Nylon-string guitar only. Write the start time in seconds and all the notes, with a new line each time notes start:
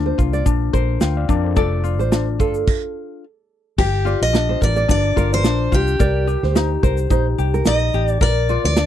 0.06 C5
0.33 D5
0.73 A#4
1.56 D5
1.99 C5
2.40 A4
4.06 D5
4.49 C5
4.76 D5
5.17 A#4
6.00 D5
6.43 C5
6.83 A#4
7.11 C5
7.54 A#4
8.49 D5